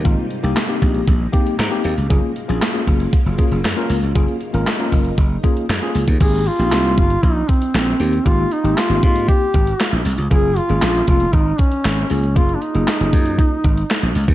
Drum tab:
CC |----------------|----------------|----------------|x---------------|
HH |x-xxx-xxx-xxx-ox|x-xxx-xxx-xxx-ox|xxxxxxoxx-xxxxox|x-xxx-xxx-xxx-ox|
CP |----x-------x---|----x-------x---|----x-------x---|----x-------x---|
SD |----o-------o---|----o-------o---|----o-------o---|----o-------o---|
BD |o-----o-o-o-----|o-----o-o-o-----|o-----o-o-o----o|o-----o-o-o-----|

CC |----------------|----------------|----------------|
HH |x-xxx-xxx-xxx-ox|x-xxx-xxx-xxx-ox|xxxxxxoxx-xxxxox|
CP |----x-------x---|----x-------x---|----x-------x---|
SD |----o-------o---|----o-------o---|----o-------o---|
BD |o-----o-o-o-----|o-----o-o-o-----|o-----o-o-o----o|